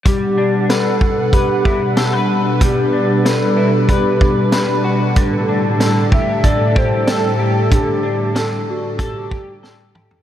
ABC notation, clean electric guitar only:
X:1
M:4/4
L:1/16
Q:1/4=94
K:G
V:1 name="Clean electric guitar"
G,2 D2 B4 B2 E z A B3 | G,2 D2 B2 E z B4 B2 F2 | D,2 D2 A2 G2 A2 G2 A2 G2 | D,2 D2 A4 A2 G2 A2 G2 |]